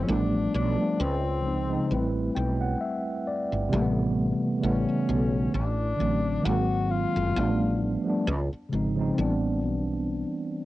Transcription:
0.03 F3 G3 C#4
0.07 A1 A3 B3 D4
0.54 B1 D4
0.75 F3 G3 A3
0.80 B3 D4
1.00 C#2 C4
1.41 C#3 F3 G#3
1.46 C4 D#4
1.67 C#3 F3 G#3
1.71 C4 D#4
1.87 A1 G3 A3 C4
1.92 E4 B4
2.35 B1 G5
2.61 F#5
2.81 E5
3.27 D5
3.52 G1
3.69 A1 C3 E3 G3
3.73 A3 A#3
3.81 B3
4.59 C#3 E3 G3
4.63 A1 A3 B3 C#4
4.89 muted fretless electric bass stroke
5.09 B1
5.54 A1 D4
5.96 A1 D3 E3 F#3
6.01 A3 C4
6.41 G#1 D#3 F#3 G#3
6.46 A#3 C4 F#4
6.91 F4
7.16 F#1
7.33 A1 F3 G3 A3
7.37 B3 D4
8.04 F3 G3 A3
8.08 B3 D4
8.27 C#2
8.53 muted fretless electric bass stroke
8.69 G#1 C#3 F3 G#3
8.73 C4 D#4
8.95 C#3 F3 G#3
8.99 C4 D#4
9.15 A1 E3 G3 C4
9.19 B3 D4
9.64 B1

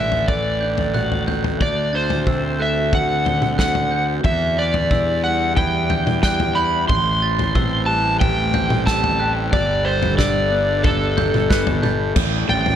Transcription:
Already playing: A1 A2 D3 A3 D4 E5 F#6
0.12 floor tom
0.28 A3 D5, kick, floor tom
0.61 D4 G6
0.78 floor tom
0.94 F#4 F#6, mid tom
1.12 floor tom
1.27 A3 G6, floor tom
1.44 floor tom
1.60 D2 D3 C4 F#4 D5, kick, floor tom
1.93 D3 C5 A6
2.10 floor tom
2.27 C4 E6, kick, mid tom
2.59 A3 E5 F#6
2.92 F#4 F#5, kick, floor tom
3.25 C4 G7, floor tom
3.42 mid tom
3.58 A3 F#5 F#6, kick, snare
3.75 floor tom
3.91 F#4 G6
4.24 E2 E3 E4 G4 E5, kick, floor tom
4.58 E3 D5 B6
4.74 floor tom
4.91 D4 E6, kick, mid tom
5.24 G3 F#5 F#6
5.56 E4 G5, kick, floor tom
5.90 D4 G6, floor tom
6.07 mid tom
6.23 G3 G5 F#6, kick, snare
6.40 floor tom
6.55 E4 B5 G6
6.88 A1 A2 A3 C5 C6, kick, floor tom
7.22 E3 A6
7.39 floor tom
7.55 C4 E6, kick, mid tom
7.86 G3 A5 F#6
8.20 G4 G5, kick, floor tom
8.54 C4 G6, floor tom
8.70 mid tom
8.86 G3 A5 E6, kick, snare
9.04 floor tom
9.19 G4 F#6
9.52 G1 G3 D4 A4 D5, kick, floor tom
9.85 G3 C5 A6
10.03 floor tom
10.18 D4 D5 E6, kick, snare, mid tom
10.51 B3 F#6
10.84 A4, kick, floor tom
11.17 D4 G6, floor tom
11.34 mid tom
11.49 B3 F#6, kick, snare
11.67 floor tom
11.82 A4 G6, mid tom
12.14 A1 A2 A3 E4 G4 C5, kick, floor tom, crash
12.49 A1 G3 G5 A6, floor tom
12.66 floor tom

